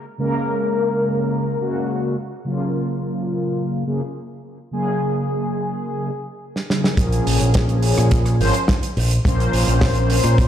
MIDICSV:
0, 0, Header, 1, 4, 480
1, 0, Start_track
1, 0, Key_signature, -5, "minor"
1, 0, Tempo, 566038
1, 163, Time_signature, 4, 2, 24, 8
1, 8886, End_track
2, 0, Start_track
2, 0, Title_t, "Analog polysynth"
2, 0, Program_c, 0, 90
2, 153, Note_on_c, 0, 49, 74
2, 159, Note_on_c, 0, 56, 74
2, 165, Note_on_c, 0, 58, 70
2, 171, Note_on_c, 0, 70, 89
2, 1330, Note_off_c, 0, 49, 0
2, 1333, Note_off_c, 0, 56, 0
2, 1336, Note_off_c, 0, 58, 0
2, 1339, Note_off_c, 0, 70, 0
2, 1357, Note_on_c, 0, 49, 75
2, 1359, Note_on_c, 0, 56, 67
2, 1363, Note_on_c, 0, 58, 70
2, 1365, Note_on_c, 0, 66, 85
2, 1826, Note_off_c, 0, 49, 0
2, 1827, Note_off_c, 0, 56, 0
2, 1829, Note_off_c, 0, 58, 0
2, 1830, Note_off_c, 0, 66, 0
2, 2073, Note_on_c, 0, 49, 74
2, 2079, Note_on_c, 0, 54, 66
2, 2085, Note_on_c, 0, 58, 68
2, 2090, Note_on_c, 0, 65, 83
2, 3250, Note_off_c, 0, 49, 0
2, 3253, Note_off_c, 0, 54, 0
2, 3256, Note_off_c, 0, 58, 0
2, 3258, Note_off_c, 0, 65, 0
2, 3276, Note_on_c, 0, 49, 78
2, 3278, Note_on_c, 0, 54, 72
2, 3282, Note_on_c, 0, 58, 71
2, 3284, Note_on_c, 0, 68, 82
2, 3399, Note_off_c, 0, 49, 0
2, 3400, Note_off_c, 0, 54, 0
2, 3401, Note_off_c, 0, 58, 0
2, 3403, Note_off_c, 0, 68, 0
2, 3994, Note_on_c, 0, 49, 75
2, 3999, Note_on_c, 0, 54, 69
2, 4005, Note_on_c, 0, 58, 72
2, 4010, Note_on_c, 0, 68, 84
2, 5170, Note_off_c, 0, 49, 0
2, 5173, Note_off_c, 0, 54, 0
2, 5176, Note_off_c, 0, 58, 0
2, 5178, Note_off_c, 0, 68, 0
2, 5675, Note_on_c, 0, 49, 78
2, 5678, Note_on_c, 0, 54, 73
2, 5681, Note_on_c, 0, 58, 71
2, 5684, Note_on_c, 0, 68, 83
2, 5891, Note_off_c, 0, 49, 0
2, 5892, Note_off_c, 0, 54, 0
2, 5894, Note_off_c, 0, 58, 0
2, 5895, Note_off_c, 0, 68, 0
2, 5911, Note_on_c, 0, 53, 82
2, 5917, Note_on_c, 0, 58, 71
2, 5923, Note_on_c, 0, 61, 75
2, 5928, Note_on_c, 0, 68, 89
2, 7089, Note_off_c, 0, 53, 0
2, 7092, Note_off_c, 0, 58, 0
2, 7095, Note_off_c, 0, 61, 0
2, 7097, Note_off_c, 0, 68, 0
2, 7118, Note_on_c, 0, 53, 83
2, 7121, Note_on_c, 0, 58, 75
2, 7123, Note_on_c, 0, 61, 74
2, 7126, Note_on_c, 0, 72, 92
2, 7239, Note_off_c, 0, 53, 0
2, 7241, Note_off_c, 0, 58, 0
2, 7242, Note_off_c, 0, 61, 0
2, 7244, Note_off_c, 0, 72, 0
2, 7835, Note_on_c, 0, 53, 84
2, 7842, Note_on_c, 0, 58, 78
2, 7847, Note_on_c, 0, 61, 76
2, 7853, Note_on_c, 0, 72, 87
2, 8886, Note_off_c, 0, 53, 0
2, 8886, Note_off_c, 0, 58, 0
2, 8886, Note_off_c, 0, 61, 0
2, 8886, Note_off_c, 0, 72, 0
2, 8886, End_track
3, 0, Start_track
3, 0, Title_t, "Fingered electric bass"
3, 0, Program_c, 1, 33
3, 5914, Note_on_c, 1, 34, 96
3, 6095, Note_off_c, 1, 34, 0
3, 6163, Note_on_c, 1, 34, 81
3, 6252, Note_off_c, 1, 34, 0
3, 6285, Note_on_c, 1, 34, 97
3, 6713, Note_off_c, 1, 34, 0
3, 6766, Note_on_c, 1, 46, 98
3, 7120, Note_off_c, 1, 46, 0
3, 7125, Note_on_c, 1, 32, 97
3, 7213, Note_off_c, 1, 32, 0
3, 7604, Note_on_c, 1, 34, 86
3, 7780, Note_off_c, 1, 34, 0
3, 7845, Note_on_c, 1, 34, 98
3, 8021, Note_off_c, 1, 34, 0
3, 8083, Note_on_c, 1, 34, 84
3, 8173, Note_off_c, 1, 34, 0
3, 8206, Note_on_c, 1, 34, 95
3, 8633, Note_off_c, 1, 34, 0
3, 8685, Note_on_c, 1, 46, 99
3, 8886, Note_off_c, 1, 46, 0
3, 8886, End_track
4, 0, Start_track
4, 0, Title_t, "Drums"
4, 5562, Note_on_c, 9, 38, 45
4, 5647, Note_off_c, 9, 38, 0
4, 5683, Note_on_c, 9, 38, 71
4, 5768, Note_off_c, 9, 38, 0
4, 5803, Note_on_c, 9, 38, 77
4, 5888, Note_off_c, 9, 38, 0
4, 5914, Note_on_c, 9, 36, 110
4, 5914, Note_on_c, 9, 42, 89
4, 5998, Note_off_c, 9, 36, 0
4, 5999, Note_off_c, 9, 42, 0
4, 6042, Note_on_c, 9, 42, 51
4, 6127, Note_off_c, 9, 42, 0
4, 6164, Note_on_c, 9, 46, 102
4, 6249, Note_off_c, 9, 46, 0
4, 6281, Note_on_c, 9, 42, 72
4, 6366, Note_off_c, 9, 42, 0
4, 6393, Note_on_c, 9, 42, 88
4, 6403, Note_on_c, 9, 38, 116
4, 6404, Note_on_c, 9, 36, 107
4, 6478, Note_off_c, 9, 42, 0
4, 6488, Note_off_c, 9, 38, 0
4, 6489, Note_off_c, 9, 36, 0
4, 6520, Note_on_c, 9, 42, 49
4, 6605, Note_off_c, 9, 42, 0
4, 6636, Note_on_c, 9, 46, 116
4, 6720, Note_off_c, 9, 46, 0
4, 6764, Note_on_c, 9, 37, 77
4, 6771, Note_on_c, 9, 42, 77
4, 6849, Note_off_c, 9, 37, 0
4, 6856, Note_off_c, 9, 42, 0
4, 6878, Note_on_c, 9, 42, 92
4, 6883, Note_on_c, 9, 36, 115
4, 6963, Note_off_c, 9, 42, 0
4, 6968, Note_off_c, 9, 36, 0
4, 7000, Note_on_c, 9, 37, 61
4, 7003, Note_on_c, 9, 42, 53
4, 7085, Note_off_c, 9, 37, 0
4, 7088, Note_off_c, 9, 42, 0
4, 7129, Note_on_c, 9, 46, 102
4, 7214, Note_off_c, 9, 46, 0
4, 7245, Note_on_c, 9, 42, 68
4, 7330, Note_off_c, 9, 42, 0
4, 7361, Note_on_c, 9, 38, 127
4, 7368, Note_on_c, 9, 42, 88
4, 7370, Note_on_c, 9, 36, 107
4, 7445, Note_off_c, 9, 38, 0
4, 7453, Note_off_c, 9, 42, 0
4, 7455, Note_off_c, 9, 36, 0
4, 7487, Note_on_c, 9, 42, 62
4, 7571, Note_off_c, 9, 42, 0
4, 7606, Note_on_c, 9, 46, 104
4, 7691, Note_off_c, 9, 46, 0
4, 7724, Note_on_c, 9, 42, 69
4, 7808, Note_off_c, 9, 42, 0
4, 7845, Note_on_c, 9, 36, 127
4, 7849, Note_on_c, 9, 42, 87
4, 7929, Note_off_c, 9, 36, 0
4, 7934, Note_off_c, 9, 42, 0
4, 7974, Note_on_c, 9, 42, 53
4, 8059, Note_off_c, 9, 42, 0
4, 8084, Note_on_c, 9, 46, 114
4, 8169, Note_off_c, 9, 46, 0
4, 8207, Note_on_c, 9, 42, 71
4, 8292, Note_off_c, 9, 42, 0
4, 8320, Note_on_c, 9, 38, 123
4, 8323, Note_on_c, 9, 36, 122
4, 8324, Note_on_c, 9, 46, 79
4, 8405, Note_off_c, 9, 38, 0
4, 8408, Note_off_c, 9, 36, 0
4, 8408, Note_off_c, 9, 46, 0
4, 8441, Note_on_c, 9, 42, 49
4, 8526, Note_off_c, 9, 42, 0
4, 8562, Note_on_c, 9, 46, 114
4, 8647, Note_off_c, 9, 46, 0
4, 8683, Note_on_c, 9, 37, 77
4, 8686, Note_on_c, 9, 42, 62
4, 8768, Note_off_c, 9, 37, 0
4, 8771, Note_off_c, 9, 42, 0
4, 8804, Note_on_c, 9, 36, 124
4, 8810, Note_on_c, 9, 42, 90
4, 8886, Note_off_c, 9, 36, 0
4, 8886, Note_off_c, 9, 42, 0
4, 8886, End_track
0, 0, End_of_file